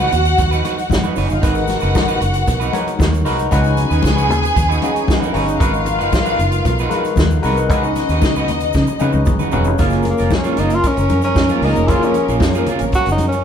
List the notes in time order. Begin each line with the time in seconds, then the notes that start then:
Already playing: F#4 F#5
0.00 D#4 F#4 B4
0.12 D#2, muted clean electric guitar stroke, closed hi-hat, low conga, shaker
0.25 muted clean electric guitar stroke, closed hi-hat, shaker
0.37 D#2, muted clean electric guitar stroke, kick, closed hi-hat, muted conga, shaker
0.51 D#4 F#4 B4, shaker
0.64 D#4 F#4 B4, closed hi-hat, muted conga, shaker
0.77 muted clean electric guitar stroke, closed hi-hat, shaker
0.90 G#1, muted clean electric guitar stroke, kick, snare, high conga, shaker
1.04 D#4 F#4 B4, high conga, shaker
1.08 B3 B4
1.16 F#1 C#4 D#4 F#4 B4 C#5, open hi-hat, shaker
1.25 D#4 D#5
1.30 G1 F4, muted clean electric guitar stroke, closed hi-hat, shaker
1.34 F5
1.42 G#1 G#3 D#4 F#4 A#4 B4 F#5, kick, closed hi-hat, muted conga, shaker
1.55 muted clean electric guitar stroke, closed hi-hat, shaker
1.67 muted clean electric guitar stroke, closed hi-hat, muted conga, shaker
1.71 snare
1.80 F#1 D#4 F#4 B4, closed hi-hat, shaker
1.95 G#1, muted clean electric guitar stroke, kick, snare, high conga, shaker
2.08 D#4 F#4 B4, shaker
2.21 F#1, muted clean electric guitar stroke, closed hi-hat, shaker
2.34 muted clean electric guitar stroke, closed hi-hat, shaker
2.47 B1, muted clean electric guitar stroke, kick, closed hi-hat, muted conga, shaker
2.60 D#4 F#4 B4, shaker
2.72 G#3 D#4 F#4 A#4 B4 C#5, closed hi-hat, muted conga, shaker
2.87 muted clean electric guitar stroke, closed hi-hat, shaker
2.99 D#2, muted clean electric guitar stroke, kick, snare, high conga, shaker
3.12 muted clean electric guitar stroke, closed hi-hat, high conga, shaker
3.24 C2 G#3 D#4 F#4 A#4 B4, open hi-hat, shaker
3.39 muted clean electric guitar stroke, closed hi-hat, shaker
3.51 C#2 C#3 C#4 D#4 F#4 G#4 B4 G#5, kick, closed hi-hat, muted conga, shaker
3.64 muted clean electric guitar stroke, closed hi-hat, shaker
3.77 muted clean electric guitar stroke, closed hi-hat, muted conga, shaker
3.90 D#2 D#4 F#4 B4, closed hi-hat, shaker
4.02 C#2, muted clean electric guitar stroke, kick, snare, high conga, shaker
4.16 D#4 F#4 B4, shaker
4.29 D#2, muted clean electric guitar stroke, closed hi-hat, low conga, shaker
4.42 muted clean electric guitar stroke, closed hi-hat, shaker
4.55 D#2, muted clean electric guitar stroke, kick, closed hi-hat, muted conga, shaker
4.69 D#4 F#4 B4, shaker
4.82 C#3 C#4 D#4 F#4 G#4 B4, closed hi-hat, muted conga, shaker
4.94 muted clean electric guitar stroke, closed hi-hat, shaker
5.07 muted clean electric guitar stroke, kick, snare, high conga, shaker
5.20 D#4 F#4 B4, closed hi-hat, high conga, shaker
5.25 A#3 A#4
5.33 G1 C#3 B3 C#4 D#4 F#4 B4, open hi-hat, shaker
5.42 C#4 C#5
5.47 D#4 D#5, muted clean electric guitar stroke, closed hi-hat, shaker
5.59 G#1 G#3 D#4 F4 F#4 A#4 B4 F5, kick, closed hi-hat, muted conga, shaker
5.73 muted clean electric guitar stroke, shaker
5.85 muted clean electric guitar stroke, closed hi-hat, muted conga, shaker
5.99 F#1 D#4 F#4 B4, closed hi-hat, shaker
6.12 G#1, muted clean electric guitar stroke, kick, snare, high conga, shaker
6.25 D#4 F#4 B4, closed hi-hat, shaker
6.39 F#1, muted clean electric guitar stroke, closed hi-hat, shaker
6.51 muted clean electric guitar stroke, closed hi-hat, shaker
6.65 B1, muted clean electric guitar stroke, kick, closed hi-hat, muted conga, shaker
6.79 D#4 F#4 B4, shaker
6.89 G#3 D#4 F#4 A#4 B4, closed hi-hat, muted conga, shaker
6.93 F#4 B4
7.04 muted clean electric guitar stroke, closed hi-hat, shaker
7.16 D#2, muted clean electric guitar stroke, kick, snare, high conga, shaker
7.31 muted clean electric guitar stroke, high conga, shaker
7.42 C2 G#3 D#4 F#4 A#4 B4, open hi-hat, shaker
7.47 B4
7.57 muted clean electric guitar stroke, closed hi-hat, shaker
7.68 C#2 C#3 C#4 D#4 F#4 A#4 D#5, kick, closed hi-hat, muted conga, shaker
7.73 F#4 B4
7.84 muted clean electric guitar stroke, shaker
7.96 muted clean electric guitar stroke, snare, closed hi-hat, muted conga, shaker
8.09 D#2 D#4 F#4 B4, closed hi-hat, shaker
8.22 C#2, muted clean electric guitar stroke, kick, snare, high conga, shaker
8.36 D#4 F#4 B4, shaker
8.48 D#2, muted clean electric guitar stroke, closed hi-hat, low conga, shaker
8.60 muted clean electric guitar stroke, closed hi-hat, shaker
8.73 C#3, kick, snare, muted conga, shaker
8.87 muted clean electric guitar stroke, shaker
8.99 C#3 C#4 D#4 F#4 B4, high tom, muted conga, shaker
9.13 C#2, muted clean electric guitar stroke, high tom, shaker
9.26 G#1 D#5, muted clean electric guitar stroke, kick, mid tom, high conga, shaker
9.39 D#4 F#4 B4, high conga, shaker
9.51 E1 C#3 C#4 D#4 F#4 B4 C#5, floor tom, shaker
9.64 F1, muted clean electric guitar stroke, floor tom, shaker
9.78 F#1 F3 F#3 A#3 C#4 F4 G#4 A#4, kick, closed hi-hat, muted conga, shaker
9.90 closed hi-hat, shaker
10.03 closed hi-hat, muted conga, shaker
10.07 A#3, muted clean electric guitar stroke
10.18 F1 A#3 F4 A#4, closed hi-hat, shaker
10.30 muted clean electric guitar stroke, kick, snare, high conga, shaker
10.35 C#4
10.44 A#3 F4 G#4, closed hi-hat, shaker
10.57 F#1 A#3 D#4 F4 G#4, closed hi-hat, shaker
10.70 muted clean electric guitar stroke, closed hi-hat, shaker
10.74 F4
10.84 C#4, muted clean electric guitar stroke, kick, closed hi-hat, muted conga, shaker
10.97 F#1, muted clean electric guitar stroke, closed hi-hat, shaker
11.09 F#2, closed hi-hat, muted conga, shaker
11.22 C#4, muted clean electric guitar stroke, closed hi-hat, shaker
11.35 F#2, muted clean electric guitar stroke, kick, snare, high conga, shaker
11.49 A#3 F4 G#4, closed hi-hat, high conga, shaker
11.62 C#2 F#3 A#3 C#4 D#4 F4 G#4 A#4, open hi-hat
11.76 F1, muted clean electric guitar stroke, closed hi-hat, shaker
11.87 F#1 F#3 A#3 C#4 E4 F4 G#4 C#5, kick, closed hi-hat, muted conga, shaker
11.92 G#4
12.03 C#4, closed hi-hat, shaker
12.14 muted clean electric guitar stroke, closed hi-hat, muted conga, shaker
12.28 A#1 A#3 F4 G#4, closed hi-hat, shaker
12.40 F#2, muted clean electric guitar stroke, kick, snare, high conga, shaker
12.53 F4 G#4, closed hi-hat, shaker
12.57 A#3
12.66 A#3 F4 G#4, closed hi-hat, low conga, shaker
12.79 G#1, muted clean electric guitar stroke, closed hi-hat, shaker
12.92 F#4, muted clean electric guitar stroke, kick, closed hi-hat, muted conga, shaker
13.06 F#1, muted clean electric guitar stroke, closed hi-hat, shaker
13.12 D#4
13.18 F#2, closed hi-hat, muted conga, shaker
13.28 C#4
13.32 muted clean electric guitar stroke, closed hi-hat, shaker